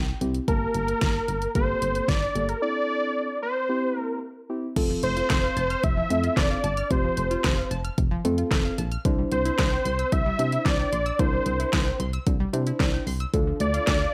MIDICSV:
0, 0, Header, 1, 6, 480
1, 0, Start_track
1, 0, Key_signature, -1, "major"
1, 0, Tempo, 535714
1, 429, Time_signature, 4, 2, 24, 8
1, 12669, End_track
2, 0, Start_track
2, 0, Title_t, "Analog synth lead"
2, 0, Program_c, 0, 81
2, 0, Note_on_c, 0, 79, 116
2, 190, Note_off_c, 0, 79, 0
2, 432, Note_on_c, 0, 70, 107
2, 1355, Note_off_c, 0, 70, 0
2, 1392, Note_on_c, 0, 72, 103
2, 1870, Note_on_c, 0, 74, 109
2, 1883, Note_off_c, 0, 72, 0
2, 2230, Note_on_c, 0, 70, 91
2, 2244, Note_off_c, 0, 74, 0
2, 2343, Note_off_c, 0, 70, 0
2, 2348, Note_on_c, 0, 74, 120
2, 3033, Note_off_c, 0, 74, 0
2, 3068, Note_on_c, 0, 72, 93
2, 3570, Note_off_c, 0, 72, 0
2, 3570, Note_on_c, 0, 70, 93
2, 3753, Note_off_c, 0, 70, 0
2, 4510, Note_on_c, 0, 72, 103
2, 5229, Note_on_c, 0, 76, 117
2, 5242, Note_off_c, 0, 72, 0
2, 5708, Note_on_c, 0, 74, 104
2, 5722, Note_off_c, 0, 76, 0
2, 6190, Note_on_c, 0, 72, 99
2, 6203, Note_off_c, 0, 74, 0
2, 6910, Note_off_c, 0, 72, 0
2, 8351, Note_on_c, 0, 72, 100
2, 9070, Note_on_c, 0, 76, 118
2, 9084, Note_off_c, 0, 72, 0
2, 9550, Note_on_c, 0, 74, 107
2, 9563, Note_off_c, 0, 76, 0
2, 10030, Note_on_c, 0, 72, 98
2, 10044, Note_off_c, 0, 74, 0
2, 10750, Note_off_c, 0, 72, 0
2, 12191, Note_on_c, 0, 74, 103
2, 12669, Note_off_c, 0, 74, 0
2, 12669, End_track
3, 0, Start_track
3, 0, Title_t, "Synth pluck"
3, 0, Program_c, 1, 84
3, 4269, Note_on_c, 1, 48, 85
3, 4353, Note_off_c, 1, 48, 0
3, 4389, Note_on_c, 1, 53, 79
3, 4473, Note_off_c, 1, 53, 0
3, 4508, Note_on_c, 1, 57, 76
3, 4593, Note_off_c, 1, 57, 0
3, 4629, Note_on_c, 1, 65, 93
3, 4713, Note_off_c, 1, 65, 0
3, 4748, Note_on_c, 1, 72, 83
3, 4832, Note_off_c, 1, 72, 0
3, 4870, Note_on_c, 1, 77, 91
3, 4953, Note_off_c, 1, 77, 0
3, 4989, Note_on_c, 1, 81, 107
3, 5073, Note_off_c, 1, 81, 0
3, 5109, Note_on_c, 1, 89, 97
3, 5193, Note_off_c, 1, 89, 0
3, 5229, Note_on_c, 1, 48, 74
3, 5313, Note_off_c, 1, 48, 0
3, 5349, Note_on_c, 1, 53, 97
3, 5433, Note_off_c, 1, 53, 0
3, 5469, Note_on_c, 1, 57, 80
3, 5553, Note_off_c, 1, 57, 0
3, 5589, Note_on_c, 1, 65, 84
3, 5673, Note_off_c, 1, 65, 0
3, 5708, Note_on_c, 1, 72, 102
3, 5792, Note_off_c, 1, 72, 0
3, 5828, Note_on_c, 1, 77, 88
3, 5912, Note_off_c, 1, 77, 0
3, 5948, Note_on_c, 1, 81, 93
3, 6033, Note_off_c, 1, 81, 0
3, 6068, Note_on_c, 1, 89, 106
3, 6152, Note_off_c, 1, 89, 0
3, 6188, Note_on_c, 1, 48, 90
3, 6273, Note_off_c, 1, 48, 0
3, 6308, Note_on_c, 1, 53, 78
3, 6392, Note_off_c, 1, 53, 0
3, 6428, Note_on_c, 1, 57, 76
3, 6512, Note_off_c, 1, 57, 0
3, 6548, Note_on_c, 1, 65, 96
3, 6632, Note_off_c, 1, 65, 0
3, 6668, Note_on_c, 1, 72, 84
3, 6753, Note_off_c, 1, 72, 0
3, 6789, Note_on_c, 1, 77, 87
3, 6873, Note_off_c, 1, 77, 0
3, 6909, Note_on_c, 1, 81, 106
3, 6993, Note_off_c, 1, 81, 0
3, 7029, Note_on_c, 1, 89, 93
3, 7113, Note_off_c, 1, 89, 0
3, 7149, Note_on_c, 1, 48, 76
3, 7233, Note_off_c, 1, 48, 0
3, 7269, Note_on_c, 1, 53, 97
3, 7353, Note_off_c, 1, 53, 0
3, 7390, Note_on_c, 1, 57, 78
3, 7474, Note_off_c, 1, 57, 0
3, 7510, Note_on_c, 1, 65, 80
3, 7593, Note_off_c, 1, 65, 0
3, 7629, Note_on_c, 1, 72, 101
3, 7713, Note_off_c, 1, 72, 0
3, 7750, Note_on_c, 1, 77, 92
3, 7834, Note_off_c, 1, 77, 0
3, 7870, Note_on_c, 1, 81, 89
3, 7954, Note_off_c, 1, 81, 0
3, 7990, Note_on_c, 1, 89, 103
3, 8074, Note_off_c, 1, 89, 0
3, 8111, Note_on_c, 1, 50, 89
3, 8194, Note_off_c, 1, 50, 0
3, 8231, Note_on_c, 1, 55, 75
3, 8314, Note_off_c, 1, 55, 0
3, 8351, Note_on_c, 1, 60, 76
3, 8434, Note_off_c, 1, 60, 0
3, 8471, Note_on_c, 1, 64, 100
3, 8554, Note_off_c, 1, 64, 0
3, 8591, Note_on_c, 1, 74, 86
3, 8675, Note_off_c, 1, 74, 0
3, 8710, Note_on_c, 1, 79, 88
3, 8794, Note_off_c, 1, 79, 0
3, 8831, Note_on_c, 1, 84, 106
3, 8914, Note_off_c, 1, 84, 0
3, 8952, Note_on_c, 1, 88, 93
3, 9035, Note_off_c, 1, 88, 0
3, 9071, Note_on_c, 1, 50, 78
3, 9155, Note_off_c, 1, 50, 0
3, 9191, Note_on_c, 1, 55, 99
3, 9274, Note_off_c, 1, 55, 0
3, 9311, Note_on_c, 1, 60, 79
3, 9395, Note_off_c, 1, 60, 0
3, 9432, Note_on_c, 1, 64, 84
3, 9515, Note_off_c, 1, 64, 0
3, 9552, Note_on_c, 1, 74, 100
3, 9635, Note_off_c, 1, 74, 0
3, 9672, Note_on_c, 1, 79, 88
3, 9755, Note_off_c, 1, 79, 0
3, 9791, Note_on_c, 1, 84, 91
3, 9874, Note_off_c, 1, 84, 0
3, 9910, Note_on_c, 1, 88, 103
3, 9994, Note_off_c, 1, 88, 0
3, 10030, Note_on_c, 1, 50, 86
3, 10114, Note_off_c, 1, 50, 0
3, 10151, Note_on_c, 1, 55, 80
3, 10234, Note_off_c, 1, 55, 0
3, 10271, Note_on_c, 1, 60, 78
3, 10354, Note_off_c, 1, 60, 0
3, 10391, Note_on_c, 1, 64, 96
3, 10474, Note_off_c, 1, 64, 0
3, 10510, Note_on_c, 1, 74, 88
3, 10594, Note_off_c, 1, 74, 0
3, 10631, Note_on_c, 1, 79, 86
3, 10714, Note_off_c, 1, 79, 0
3, 10751, Note_on_c, 1, 84, 103
3, 10834, Note_off_c, 1, 84, 0
3, 10871, Note_on_c, 1, 88, 96
3, 10955, Note_off_c, 1, 88, 0
3, 10990, Note_on_c, 1, 50, 79
3, 11074, Note_off_c, 1, 50, 0
3, 11111, Note_on_c, 1, 55, 98
3, 11194, Note_off_c, 1, 55, 0
3, 11231, Note_on_c, 1, 60, 77
3, 11314, Note_off_c, 1, 60, 0
3, 11351, Note_on_c, 1, 64, 81
3, 11434, Note_off_c, 1, 64, 0
3, 11471, Note_on_c, 1, 74, 99
3, 11554, Note_off_c, 1, 74, 0
3, 11591, Note_on_c, 1, 79, 88
3, 11674, Note_off_c, 1, 79, 0
3, 11711, Note_on_c, 1, 84, 91
3, 11794, Note_off_c, 1, 84, 0
3, 11831, Note_on_c, 1, 88, 105
3, 11914, Note_off_c, 1, 88, 0
3, 11950, Note_on_c, 1, 50, 89
3, 12034, Note_off_c, 1, 50, 0
3, 12070, Note_on_c, 1, 53, 76
3, 12154, Note_off_c, 1, 53, 0
3, 12190, Note_on_c, 1, 57, 80
3, 12274, Note_off_c, 1, 57, 0
3, 12310, Note_on_c, 1, 65, 99
3, 12393, Note_off_c, 1, 65, 0
3, 12429, Note_on_c, 1, 74, 86
3, 12513, Note_off_c, 1, 74, 0
3, 12549, Note_on_c, 1, 77, 88
3, 12633, Note_off_c, 1, 77, 0
3, 12669, End_track
4, 0, Start_track
4, 0, Title_t, "Synth keys"
4, 0, Program_c, 2, 88
4, 189, Note_on_c, 2, 60, 78
4, 189, Note_on_c, 2, 64, 70
4, 189, Note_on_c, 2, 67, 86
4, 337, Note_off_c, 2, 60, 0
4, 337, Note_off_c, 2, 64, 0
4, 337, Note_off_c, 2, 67, 0
4, 429, Note_on_c, 2, 81, 78
4, 430, Note_on_c, 2, 58, 73
4, 430, Note_on_c, 2, 67, 66
4, 1018, Note_off_c, 2, 67, 0
4, 1018, Note_off_c, 2, 81, 0
4, 1019, Note_off_c, 2, 58, 0
4, 1389, Note_on_c, 2, 58, 71
4, 1389, Note_on_c, 2, 67, 67
4, 1389, Note_on_c, 2, 69, 82
4, 1831, Note_off_c, 2, 58, 0
4, 1831, Note_off_c, 2, 67, 0
4, 1831, Note_off_c, 2, 69, 0
4, 2108, Note_on_c, 2, 58, 63
4, 2108, Note_on_c, 2, 67, 60
4, 2108, Note_on_c, 2, 69, 71
4, 2256, Note_off_c, 2, 58, 0
4, 2256, Note_off_c, 2, 67, 0
4, 2256, Note_off_c, 2, 69, 0
4, 2349, Note_on_c, 2, 60, 71
4, 2349, Note_on_c, 2, 64, 65
4, 2349, Note_on_c, 2, 69, 78
4, 2938, Note_off_c, 2, 60, 0
4, 2938, Note_off_c, 2, 64, 0
4, 2938, Note_off_c, 2, 69, 0
4, 3308, Note_on_c, 2, 60, 70
4, 3308, Note_on_c, 2, 67, 77
4, 3309, Note_on_c, 2, 64, 64
4, 3750, Note_off_c, 2, 67, 0
4, 3751, Note_off_c, 2, 60, 0
4, 3751, Note_off_c, 2, 64, 0
4, 4028, Note_on_c, 2, 64, 68
4, 4029, Note_on_c, 2, 60, 75
4, 4029, Note_on_c, 2, 67, 83
4, 4176, Note_off_c, 2, 60, 0
4, 4176, Note_off_c, 2, 64, 0
4, 4176, Note_off_c, 2, 67, 0
4, 4268, Note_on_c, 2, 65, 79
4, 4269, Note_on_c, 2, 60, 93
4, 4269, Note_on_c, 2, 69, 96
4, 4858, Note_off_c, 2, 60, 0
4, 4858, Note_off_c, 2, 65, 0
4, 4858, Note_off_c, 2, 69, 0
4, 5468, Note_on_c, 2, 60, 76
4, 5468, Note_on_c, 2, 65, 69
4, 5468, Note_on_c, 2, 69, 87
4, 5910, Note_off_c, 2, 65, 0
4, 5910, Note_off_c, 2, 69, 0
4, 5911, Note_off_c, 2, 60, 0
4, 6188, Note_on_c, 2, 60, 74
4, 6188, Note_on_c, 2, 65, 67
4, 6188, Note_on_c, 2, 67, 85
4, 6778, Note_off_c, 2, 60, 0
4, 6778, Note_off_c, 2, 65, 0
4, 6778, Note_off_c, 2, 67, 0
4, 7389, Note_on_c, 2, 60, 94
4, 7389, Note_on_c, 2, 65, 85
4, 7389, Note_on_c, 2, 69, 106
4, 7831, Note_off_c, 2, 60, 0
4, 7831, Note_off_c, 2, 65, 0
4, 7831, Note_off_c, 2, 69, 0
4, 8109, Note_on_c, 2, 62, 91
4, 8109, Note_on_c, 2, 64, 85
4, 8109, Note_on_c, 2, 72, 102
4, 8698, Note_off_c, 2, 62, 0
4, 8698, Note_off_c, 2, 64, 0
4, 8698, Note_off_c, 2, 72, 0
4, 9309, Note_on_c, 2, 62, 81
4, 9309, Note_on_c, 2, 64, 71
4, 9309, Note_on_c, 2, 72, 85
4, 9751, Note_off_c, 2, 62, 0
4, 9751, Note_off_c, 2, 64, 0
4, 9751, Note_off_c, 2, 72, 0
4, 10029, Note_on_c, 2, 62, 73
4, 10029, Note_on_c, 2, 64, 70
4, 10029, Note_on_c, 2, 70, 85
4, 10618, Note_off_c, 2, 62, 0
4, 10618, Note_off_c, 2, 64, 0
4, 10618, Note_off_c, 2, 70, 0
4, 11229, Note_on_c, 2, 62, 91
4, 11229, Note_on_c, 2, 64, 83
4, 11229, Note_on_c, 2, 72, 101
4, 11671, Note_off_c, 2, 62, 0
4, 11671, Note_off_c, 2, 64, 0
4, 11671, Note_off_c, 2, 72, 0
4, 11949, Note_on_c, 2, 62, 89
4, 11949, Note_on_c, 2, 65, 81
4, 11949, Note_on_c, 2, 69, 97
4, 12538, Note_off_c, 2, 62, 0
4, 12538, Note_off_c, 2, 65, 0
4, 12538, Note_off_c, 2, 69, 0
4, 12669, End_track
5, 0, Start_track
5, 0, Title_t, "FM bass"
5, 0, Program_c, 3, 39
5, 0, Note_on_c, 3, 36, 104
5, 117, Note_off_c, 3, 36, 0
5, 191, Note_on_c, 3, 36, 103
5, 358, Note_off_c, 3, 36, 0
5, 431, Note_on_c, 3, 31, 104
5, 598, Note_off_c, 3, 31, 0
5, 671, Note_on_c, 3, 31, 99
5, 839, Note_off_c, 3, 31, 0
5, 911, Note_on_c, 3, 31, 98
5, 1078, Note_off_c, 3, 31, 0
5, 1151, Note_on_c, 3, 31, 92
5, 1319, Note_off_c, 3, 31, 0
5, 1391, Note_on_c, 3, 31, 105
5, 1559, Note_off_c, 3, 31, 0
5, 1632, Note_on_c, 3, 31, 90
5, 1799, Note_off_c, 3, 31, 0
5, 1866, Note_on_c, 3, 31, 96
5, 2036, Note_off_c, 3, 31, 0
5, 2110, Note_on_c, 3, 31, 94
5, 2278, Note_off_c, 3, 31, 0
5, 4270, Note_on_c, 3, 29, 116
5, 4438, Note_off_c, 3, 29, 0
5, 4508, Note_on_c, 3, 29, 105
5, 4677, Note_off_c, 3, 29, 0
5, 4749, Note_on_c, 3, 29, 107
5, 4918, Note_off_c, 3, 29, 0
5, 4988, Note_on_c, 3, 29, 105
5, 5157, Note_off_c, 3, 29, 0
5, 5230, Note_on_c, 3, 29, 104
5, 5398, Note_off_c, 3, 29, 0
5, 5469, Note_on_c, 3, 41, 97
5, 5637, Note_off_c, 3, 41, 0
5, 5706, Note_on_c, 3, 29, 97
5, 5875, Note_off_c, 3, 29, 0
5, 5949, Note_on_c, 3, 31, 103
5, 6117, Note_off_c, 3, 31, 0
5, 6189, Note_on_c, 3, 29, 110
5, 6357, Note_off_c, 3, 29, 0
5, 6429, Note_on_c, 3, 29, 98
5, 6597, Note_off_c, 3, 29, 0
5, 6670, Note_on_c, 3, 29, 103
5, 6838, Note_off_c, 3, 29, 0
5, 6909, Note_on_c, 3, 29, 95
5, 7077, Note_off_c, 3, 29, 0
5, 7150, Note_on_c, 3, 29, 107
5, 7318, Note_off_c, 3, 29, 0
5, 7390, Note_on_c, 3, 41, 101
5, 7558, Note_off_c, 3, 41, 0
5, 7627, Note_on_c, 3, 29, 99
5, 7796, Note_off_c, 3, 29, 0
5, 7870, Note_on_c, 3, 34, 103
5, 8038, Note_off_c, 3, 34, 0
5, 8110, Note_on_c, 3, 36, 108
5, 8278, Note_off_c, 3, 36, 0
5, 8350, Note_on_c, 3, 36, 104
5, 8518, Note_off_c, 3, 36, 0
5, 8591, Note_on_c, 3, 36, 109
5, 8758, Note_off_c, 3, 36, 0
5, 8830, Note_on_c, 3, 36, 99
5, 8998, Note_off_c, 3, 36, 0
5, 9071, Note_on_c, 3, 36, 108
5, 9239, Note_off_c, 3, 36, 0
5, 9310, Note_on_c, 3, 48, 96
5, 9478, Note_off_c, 3, 48, 0
5, 9547, Note_on_c, 3, 36, 103
5, 9716, Note_off_c, 3, 36, 0
5, 9789, Note_on_c, 3, 34, 90
5, 9957, Note_off_c, 3, 34, 0
5, 10030, Note_on_c, 3, 36, 111
5, 10198, Note_off_c, 3, 36, 0
5, 10269, Note_on_c, 3, 36, 105
5, 10437, Note_off_c, 3, 36, 0
5, 10511, Note_on_c, 3, 36, 102
5, 10679, Note_off_c, 3, 36, 0
5, 10750, Note_on_c, 3, 36, 101
5, 10918, Note_off_c, 3, 36, 0
5, 10991, Note_on_c, 3, 36, 107
5, 11159, Note_off_c, 3, 36, 0
5, 11229, Note_on_c, 3, 48, 103
5, 11397, Note_off_c, 3, 48, 0
5, 11467, Note_on_c, 3, 36, 99
5, 11636, Note_off_c, 3, 36, 0
5, 11708, Note_on_c, 3, 36, 96
5, 11877, Note_off_c, 3, 36, 0
5, 11950, Note_on_c, 3, 38, 109
5, 12118, Note_off_c, 3, 38, 0
5, 12188, Note_on_c, 3, 38, 103
5, 12357, Note_off_c, 3, 38, 0
5, 12431, Note_on_c, 3, 38, 101
5, 12599, Note_off_c, 3, 38, 0
5, 12669, End_track
6, 0, Start_track
6, 0, Title_t, "Drums"
6, 190, Note_on_c, 9, 42, 68
6, 280, Note_off_c, 9, 42, 0
6, 309, Note_on_c, 9, 42, 44
6, 399, Note_off_c, 9, 42, 0
6, 430, Note_on_c, 9, 36, 108
6, 430, Note_on_c, 9, 42, 70
6, 520, Note_off_c, 9, 36, 0
6, 520, Note_off_c, 9, 42, 0
6, 667, Note_on_c, 9, 42, 68
6, 757, Note_off_c, 9, 42, 0
6, 792, Note_on_c, 9, 42, 53
6, 881, Note_off_c, 9, 42, 0
6, 909, Note_on_c, 9, 38, 102
6, 910, Note_on_c, 9, 42, 77
6, 911, Note_on_c, 9, 36, 107
6, 998, Note_off_c, 9, 38, 0
6, 1000, Note_off_c, 9, 42, 0
6, 1001, Note_off_c, 9, 36, 0
6, 1150, Note_on_c, 9, 42, 63
6, 1239, Note_off_c, 9, 42, 0
6, 1270, Note_on_c, 9, 42, 49
6, 1360, Note_off_c, 9, 42, 0
6, 1390, Note_on_c, 9, 42, 69
6, 1391, Note_on_c, 9, 36, 110
6, 1479, Note_off_c, 9, 42, 0
6, 1481, Note_off_c, 9, 36, 0
6, 1631, Note_on_c, 9, 42, 75
6, 1720, Note_off_c, 9, 42, 0
6, 1749, Note_on_c, 9, 42, 49
6, 1838, Note_off_c, 9, 42, 0
6, 1867, Note_on_c, 9, 36, 108
6, 1870, Note_on_c, 9, 38, 101
6, 1871, Note_on_c, 9, 42, 72
6, 1957, Note_off_c, 9, 36, 0
6, 1959, Note_off_c, 9, 38, 0
6, 1960, Note_off_c, 9, 42, 0
6, 2110, Note_on_c, 9, 42, 68
6, 2199, Note_off_c, 9, 42, 0
6, 2229, Note_on_c, 9, 42, 45
6, 2318, Note_off_c, 9, 42, 0
6, 4269, Note_on_c, 9, 36, 117
6, 4269, Note_on_c, 9, 42, 74
6, 4269, Note_on_c, 9, 49, 97
6, 4358, Note_off_c, 9, 42, 0
6, 4359, Note_off_c, 9, 36, 0
6, 4359, Note_off_c, 9, 49, 0
6, 4506, Note_on_c, 9, 42, 70
6, 4596, Note_off_c, 9, 42, 0
6, 4630, Note_on_c, 9, 42, 57
6, 4720, Note_off_c, 9, 42, 0
6, 4748, Note_on_c, 9, 38, 107
6, 4748, Note_on_c, 9, 39, 90
6, 4749, Note_on_c, 9, 42, 84
6, 4750, Note_on_c, 9, 36, 114
6, 4837, Note_off_c, 9, 38, 0
6, 4837, Note_off_c, 9, 39, 0
6, 4839, Note_off_c, 9, 42, 0
6, 4840, Note_off_c, 9, 36, 0
6, 4988, Note_on_c, 9, 42, 69
6, 5078, Note_off_c, 9, 42, 0
6, 5110, Note_on_c, 9, 42, 49
6, 5199, Note_off_c, 9, 42, 0
6, 5228, Note_on_c, 9, 42, 72
6, 5230, Note_on_c, 9, 36, 118
6, 5318, Note_off_c, 9, 42, 0
6, 5320, Note_off_c, 9, 36, 0
6, 5470, Note_on_c, 9, 42, 76
6, 5559, Note_off_c, 9, 42, 0
6, 5587, Note_on_c, 9, 42, 53
6, 5677, Note_off_c, 9, 42, 0
6, 5706, Note_on_c, 9, 36, 118
6, 5708, Note_on_c, 9, 38, 107
6, 5708, Note_on_c, 9, 39, 87
6, 5709, Note_on_c, 9, 42, 76
6, 5795, Note_off_c, 9, 36, 0
6, 5798, Note_off_c, 9, 38, 0
6, 5798, Note_off_c, 9, 39, 0
6, 5799, Note_off_c, 9, 42, 0
6, 5948, Note_on_c, 9, 42, 72
6, 6038, Note_off_c, 9, 42, 0
6, 6068, Note_on_c, 9, 42, 47
6, 6157, Note_off_c, 9, 42, 0
6, 6188, Note_on_c, 9, 42, 77
6, 6189, Note_on_c, 9, 36, 111
6, 6277, Note_off_c, 9, 42, 0
6, 6278, Note_off_c, 9, 36, 0
6, 6426, Note_on_c, 9, 42, 72
6, 6515, Note_off_c, 9, 42, 0
6, 6550, Note_on_c, 9, 42, 56
6, 6639, Note_off_c, 9, 42, 0
6, 6667, Note_on_c, 9, 38, 112
6, 6667, Note_on_c, 9, 39, 87
6, 6669, Note_on_c, 9, 42, 85
6, 6670, Note_on_c, 9, 36, 111
6, 6757, Note_off_c, 9, 38, 0
6, 6757, Note_off_c, 9, 39, 0
6, 6759, Note_off_c, 9, 36, 0
6, 6759, Note_off_c, 9, 42, 0
6, 6908, Note_on_c, 9, 42, 68
6, 6998, Note_off_c, 9, 42, 0
6, 7030, Note_on_c, 9, 42, 50
6, 7120, Note_off_c, 9, 42, 0
6, 7149, Note_on_c, 9, 42, 74
6, 7151, Note_on_c, 9, 36, 118
6, 7239, Note_off_c, 9, 42, 0
6, 7240, Note_off_c, 9, 36, 0
6, 7391, Note_on_c, 9, 42, 78
6, 7480, Note_off_c, 9, 42, 0
6, 7508, Note_on_c, 9, 42, 53
6, 7598, Note_off_c, 9, 42, 0
6, 7627, Note_on_c, 9, 36, 118
6, 7630, Note_on_c, 9, 38, 106
6, 7630, Note_on_c, 9, 39, 89
6, 7631, Note_on_c, 9, 42, 80
6, 7716, Note_off_c, 9, 36, 0
6, 7719, Note_off_c, 9, 38, 0
6, 7719, Note_off_c, 9, 39, 0
6, 7720, Note_off_c, 9, 42, 0
6, 7869, Note_on_c, 9, 42, 74
6, 7959, Note_off_c, 9, 42, 0
6, 7988, Note_on_c, 9, 42, 47
6, 8078, Note_off_c, 9, 42, 0
6, 8109, Note_on_c, 9, 42, 80
6, 8110, Note_on_c, 9, 36, 118
6, 8199, Note_off_c, 9, 36, 0
6, 8199, Note_off_c, 9, 42, 0
6, 8347, Note_on_c, 9, 42, 69
6, 8436, Note_off_c, 9, 42, 0
6, 8472, Note_on_c, 9, 42, 58
6, 8561, Note_off_c, 9, 42, 0
6, 8589, Note_on_c, 9, 38, 108
6, 8589, Note_on_c, 9, 39, 90
6, 8590, Note_on_c, 9, 42, 87
6, 8591, Note_on_c, 9, 36, 118
6, 8678, Note_off_c, 9, 38, 0
6, 8678, Note_off_c, 9, 39, 0
6, 8680, Note_off_c, 9, 42, 0
6, 8681, Note_off_c, 9, 36, 0
6, 8829, Note_on_c, 9, 42, 67
6, 8919, Note_off_c, 9, 42, 0
6, 8951, Note_on_c, 9, 42, 52
6, 9040, Note_off_c, 9, 42, 0
6, 9070, Note_on_c, 9, 42, 73
6, 9071, Note_on_c, 9, 36, 120
6, 9159, Note_off_c, 9, 42, 0
6, 9161, Note_off_c, 9, 36, 0
6, 9311, Note_on_c, 9, 42, 78
6, 9401, Note_off_c, 9, 42, 0
6, 9429, Note_on_c, 9, 42, 52
6, 9518, Note_off_c, 9, 42, 0
6, 9547, Note_on_c, 9, 36, 115
6, 9549, Note_on_c, 9, 38, 103
6, 9549, Note_on_c, 9, 39, 86
6, 9550, Note_on_c, 9, 42, 80
6, 9637, Note_off_c, 9, 36, 0
6, 9639, Note_off_c, 9, 38, 0
6, 9639, Note_off_c, 9, 39, 0
6, 9640, Note_off_c, 9, 42, 0
6, 9790, Note_on_c, 9, 42, 75
6, 9879, Note_off_c, 9, 42, 0
6, 9909, Note_on_c, 9, 42, 45
6, 9999, Note_off_c, 9, 42, 0
6, 10029, Note_on_c, 9, 42, 76
6, 10030, Note_on_c, 9, 36, 117
6, 10118, Note_off_c, 9, 42, 0
6, 10119, Note_off_c, 9, 36, 0
6, 10267, Note_on_c, 9, 42, 72
6, 10356, Note_off_c, 9, 42, 0
6, 10392, Note_on_c, 9, 42, 55
6, 10482, Note_off_c, 9, 42, 0
6, 10509, Note_on_c, 9, 38, 110
6, 10509, Note_on_c, 9, 39, 89
6, 10511, Note_on_c, 9, 36, 112
6, 10511, Note_on_c, 9, 42, 80
6, 10599, Note_off_c, 9, 38, 0
6, 10599, Note_off_c, 9, 39, 0
6, 10601, Note_off_c, 9, 36, 0
6, 10601, Note_off_c, 9, 42, 0
6, 10750, Note_on_c, 9, 42, 70
6, 10840, Note_off_c, 9, 42, 0
6, 10871, Note_on_c, 9, 42, 50
6, 10961, Note_off_c, 9, 42, 0
6, 10990, Note_on_c, 9, 42, 76
6, 10991, Note_on_c, 9, 36, 114
6, 11080, Note_off_c, 9, 42, 0
6, 11081, Note_off_c, 9, 36, 0
6, 11232, Note_on_c, 9, 42, 80
6, 11321, Note_off_c, 9, 42, 0
6, 11349, Note_on_c, 9, 42, 53
6, 11439, Note_off_c, 9, 42, 0
6, 11467, Note_on_c, 9, 36, 118
6, 11470, Note_on_c, 9, 38, 103
6, 11470, Note_on_c, 9, 39, 87
6, 11471, Note_on_c, 9, 42, 77
6, 11557, Note_off_c, 9, 36, 0
6, 11560, Note_off_c, 9, 38, 0
6, 11560, Note_off_c, 9, 39, 0
6, 11561, Note_off_c, 9, 42, 0
6, 11710, Note_on_c, 9, 46, 73
6, 11799, Note_off_c, 9, 46, 0
6, 11829, Note_on_c, 9, 42, 46
6, 11918, Note_off_c, 9, 42, 0
6, 11949, Note_on_c, 9, 42, 77
6, 11950, Note_on_c, 9, 36, 112
6, 12039, Note_off_c, 9, 36, 0
6, 12039, Note_off_c, 9, 42, 0
6, 12187, Note_on_c, 9, 42, 71
6, 12276, Note_off_c, 9, 42, 0
6, 12311, Note_on_c, 9, 42, 55
6, 12401, Note_off_c, 9, 42, 0
6, 12428, Note_on_c, 9, 38, 108
6, 12428, Note_on_c, 9, 39, 89
6, 12430, Note_on_c, 9, 42, 84
6, 12431, Note_on_c, 9, 36, 113
6, 12518, Note_off_c, 9, 38, 0
6, 12518, Note_off_c, 9, 39, 0
6, 12520, Note_off_c, 9, 36, 0
6, 12520, Note_off_c, 9, 42, 0
6, 12669, End_track
0, 0, End_of_file